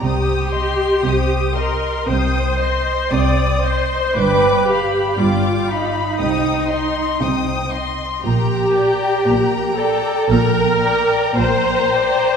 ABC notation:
X:1
M:4/4
L:1/8
Q:1/4=58
K:Gm
V:1 name="Violin section"
e' c' e' c' e' c' e' c' | d' =b d' b e' c' e' c' | b g b g b g b g |]
V:2 name="Violin section"
[cg] e [cg] e [cg] e [cg] e | [dg] f [dg] f [cg] e [cg] e | [Bg] [db] [Bg] [db] [Bg] [db] [Bg] [db] |]
V:3 name="Viola section"
G3 B c2 d c | =B G F E4 z | G3 A B2 c2 |]
V:4 name="Cello section" clef=bass
C,2 C,2 C,2 C,2 | G,,2 G,,2 C,2 C,2 | B,,2 B,,2 B,,2 B,,2 |]
V:5 name="Double bass section" clef=bass
C,,2 C,,2 C,,2 C,,2 | G,,,2 G,,,2 C,,2 C,,2 | B,,,2 B,,,2 B,,,2 B,,,2 |]